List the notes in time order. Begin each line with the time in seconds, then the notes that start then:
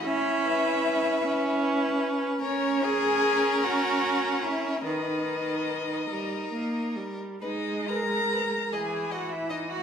0.04 C#4 E4 E5
0.42 B4
1.23 C#4
1.59 B4
2.41 C#4 A#4 C#5
2.84 G#4 G#5
3.64 F#4 F#5
4.44 E4 E5
4.86 D#3 D#4 B4 D#5
6.09 G3 A#4
6.52 A#3
6.96 G3
7.42 G#3 D#4 B4 D#5
7.88 A#4 B4 A#5
8.32 B4
8.72 E3 G#4 D#5 G#5
9.11 F#4 D#5 F#5
9.31 E4 E5
9.50 D#4 D#5
9.70 F#4 F#5